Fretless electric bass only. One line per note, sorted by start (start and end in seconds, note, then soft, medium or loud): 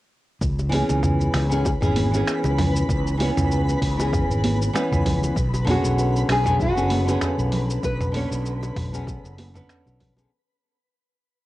0.41 0.82 C#2 medium
0.90 1.28 C#2 medium
1.34 1.75 C#2 medium
1.82 2.21 G#1 medium
2.44 2.83 C#2 medium
2.89 3.29 C#2 medium
3.37 3.76 C#2 medium
3.81 4.22 C#2 medium
4.29 4.68 G#1 medium
4.92 5.30 C#2 medium
5.36 5.77 B1 medium
5.84 6.23 B1 medium
6.29 6.69 B1 medium
6.77 7.16 F#1 medium
7.38 7.77 B1 medium
7.83 8.24 B1 medium
8.31 8.70 B1 medium
8.76 9.17 B1 medium
9.24 9.63 F#1 medium
9.86 10.25 B1 medium